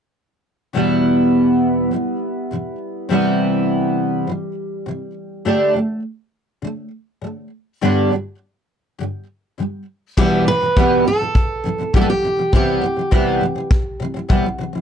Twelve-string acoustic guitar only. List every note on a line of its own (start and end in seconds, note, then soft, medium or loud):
0.73 1.90 E2 medium
0.73 1.91 B2 medium
0.73 1.93 E3 medium
0.73 3.10 G3 medium
0.73 3.11 B3 medium
0.73 3.12 E4 medium
1.91 2.15 E2 soft
1.91 2.16 B2 soft
1.91 2.16 E3 soft
2.51 2.74 E2 soft
2.51 2.75 B2 soft
2.51 2.76 E3 soft
3.09 4.26 C3 medium
3.09 4.28 E3 medium
3.09 5.45 G3 medium
3.09 4.29 B3 medium
3.09 4.29 E4 medium
4.27 4.51 C3 soft
4.27 4.52 E3 medium
4.86 5.10 C3 medium
4.86 5.11 E3 soft
5.45 5.73 D3 medium
5.45 5.75 A3 medium
5.45 5.76 D4 medium
5.45 5.76 G4 medium
5.74 5.98 D3 soft
5.74 5.99 A3 soft
6.62 6.86 D3 soft
6.62 6.88 A3 medium
7.22 7.46 D3 soft
7.22 7.47 A3 soft
7.82 8.09 G2 medium
7.82 8.11 D3 medium
7.82 8.12 G3 medium
7.82 8.12 B3 medium
7.82 8.12 D4 medium
7.82 8.12 G4 medium
8.11 8.35 G2 soft
8.11 8.35 D3 soft
8.11 8.36 G3 soft
8.99 9.23 G2 medium
8.99 9.24 D3 medium
8.99 9.24 G3 medium
9.58 9.82 G2 soft
9.58 9.82 D3 soft
9.58 9.83 G3 medium
10.17 10.45 E2 medium
10.17 10.47 B2 medium
10.17 10.47 E3 medium
10.17 10.47 G3 medium
10.17 10.47 B3 medium
10.17 10.48 G4 medium
10.47 10.60 E2 medium
10.47 10.61 B2 medium
10.61 10.75 E2 soft
10.61 10.76 B2 soft
10.61 10.76 E3 soft
10.76 11.04 E2 medium
10.76 11.05 B2 medium
10.76 11.06 E3 medium
10.76 11.06 G3 medium
10.76 11.07 B3 medium
10.76 11.07 G4 medium
11.05 11.18 E2 medium
11.05 11.20 B2 medium
11.05 11.21 E3 medium
11.19 11.44 E2 soft
11.19 11.44 B2 soft
11.19 11.45 E3 soft
11.64 11.77 E2 medium
11.64 11.78 B2 medium
11.64 11.79 E3 medium
11.78 11.92 E2 soft
11.78 11.93 B2 soft
11.78 11.93 E3 soft
11.93 12.07 E2 medium
11.93 12.09 B2 soft
11.93 12.09 E3 medium
11.93 12.09 G3 medium
11.93 12.09 B3 medium
11.93 12.09 G4 medium
12.08 12.21 E2 soft
12.08 12.23 B2 soft
12.08 12.24 E3 soft
12.23 12.36 E2 medium
12.23 12.37 B2 medium
12.23 12.38 E3 medium
12.37 12.53 E2 soft
12.37 12.52 B2 soft
12.37 12.52 E3 soft
12.53 12.80 C3 medium
12.53 12.83 E3 medium
12.53 12.83 G3 medium
12.53 12.83 B3 medium
12.53 12.83 G4 medium
12.81 12.95 C3 medium
12.81 12.98 E3 medium
12.97 13.10 C3 soft
12.97 13.10 E3 medium
13.11 13.40 C3 medium
13.11 13.41 E3 medium
13.11 13.42 G3 medium
13.11 13.42 B3 medium
13.11 13.42 G4 medium
13.41 13.54 C3 medium
13.41 13.57 E3 medium
13.56 13.80 C3 medium
13.56 13.81 E3 medium
14.00 14.13 C3 medium
14.00 14.16 E3 medium
14.14 14.27 C3 soft
14.14 14.28 E3 medium
14.29 14.43 C3 medium
14.29 14.45 E3 medium
14.29 14.45 G3 medium
14.29 14.45 B3 medium
14.29 14.45 G4 medium
14.44 14.57 C3 medium
14.44 14.60 E3 medium
14.58 14.72 C3 medium
14.58 14.74 E3 medium
14.73 14.81 C3 soft
14.73 14.81 E3 medium